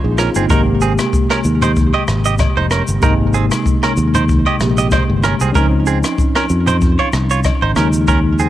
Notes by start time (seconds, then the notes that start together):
0.04 A#1 D#4 G#4
0.18 C4 C#4 F4 A#4, cross-stick, shaker
0.35 G1 A#3 C4 D#4 G#4, shaker
0.47 G#1 C3 G#3 A#3 D#4 A#4, kick, high agogo, shaker
0.52 G4
0.81 C4 G#4, shaker
0.99 cross-stick, high agogo, shaker
1.13 kick, shaker
1.30 C#4 A#4, cross-stick, high agogo
1.44 D#2, shaker
1.62 D#4 C5, mid tom, high agogo, shaker
1.76 kick, shaker
1.93 G4 D#5, high agogo
2.08 G#1, cross-stick, shaker
2.25 G4 D#5, shaker
2.39 kick, cross-stick, high agogo, low woodblock, shaker
2.57 F1 D#4 C5
2.71 C#4 A#4, cross-stick, high agogo, shaker
2.88 G1, shaker
3.00 G#1 C3 G#3 A#3 D#4 A#4, kick, high agogo, shaker
3.05 D#4
3.34 C4 G#4, shaker
3.51 cross-stick, high agogo, shaker
3.66 kick, shaker
3.83 C#4 A#4, cross-stick, high agogo
3.97 D#2, shaker
4.15 D#4 C5, mid tom, high agogo, shaker
4.29 kick, shaker
4.46 G4 D#5, high agogo
4.59 A#1 C3 G#3 A#3 G4, cross-stick, shaker
4.78 G4 D#5, shaker
4.91 D#4 C5, kick, cross-stick, high agogo, low woodblock, shaker
5.10 G1
5.24 C#4 A#4, cross-stick, high agogo, shaker
5.40 C2 C4 G#4, shaker
5.53 C#2 F3 C4 C#4 A#4, kick, high agogo, shaker
5.58 D#4
5.86 C4 G#4, shaker
6.04 cross-stick, high agogo, shaker
6.18 kick, shaker
6.36 C#4 A#4, cross-stick, high agogo
6.50 F2, shaker
6.67 D#4 C5, mid tom, high agogo, shaker
6.82 kick, shaker
6.99 F4 C#5, high agogo
7.13 C2, cross-stick, shaker
7.30 F4 C#5, shaker
7.44 kick, cross-stick, high agogo, low woodblock, shaker
7.62 G#1 D#4 C5
7.74 D#2 C#3 F3 G#3 C#4 A#4, cross-stick, high agogo, shaker
7.79 D#4
7.93 shaker
8.08 C#4 A#4, kick, high agogo, shaker
8.39 C4 G#4, shaker